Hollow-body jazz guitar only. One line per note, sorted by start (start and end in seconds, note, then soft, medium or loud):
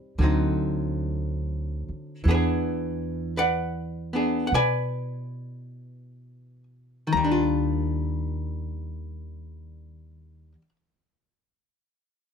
0.00 0.20 G3 soft
0.00 0.20 C4 medium
0.00 0.21 D#4 medium
0.19 2.24 D3 soft
0.19 2.23 F#3 soft
0.19 2.26 C4 soft
0.24 2.27 D#4 medium
2.24 7.12 E3 soft
2.28 3.37 B3 soft
2.28 3.38 D4 soft
2.28 2.33 G#4 soft
2.28 2.34 B4 medium
2.34 3.38 G#4 soft
3.37 4.13 B4 medium
3.37 4.15 D5 soft
3.37 4.16 F#5 medium
4.13 4.55 B3 soft
4.13 4.54 D4 soft
4.13 4.47 G#4 soft
4.47 4.52 F#5 medium
4.54 7.11 B4 medium
4.54 7.10 D5 medium
4.54 6.63 G#5 medium
7.07 10.52 D#3 medium
7.13 10.53 A#5 medium
7.17 10.61 G3 medium
7.24 10.69 D4 medium
7.32 10.76 F4 medium